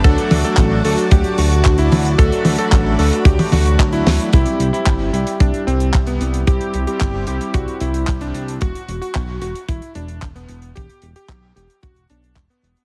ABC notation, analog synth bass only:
X:1
M:4/4
L:1/8
Q:1/4=112
K:Clyd
V:1 name="Analog synth bass" clef=bass
D,, D,, A,,, D,, D,, D,, D,, D,, | D,, D,, A,,, D,, D,, D,, D,, D,, | C,, C,, G,,, C,, C,, C,, C,, C,, | C,, C,, G,,, C,, C,, C,, C,, C,, |
E,,, E,,, B,,, E,,, E,,, E,,, E,,, E,,, | E,,, E,,, B,,, E,,, E,,, B,,, E,,, E,,, |]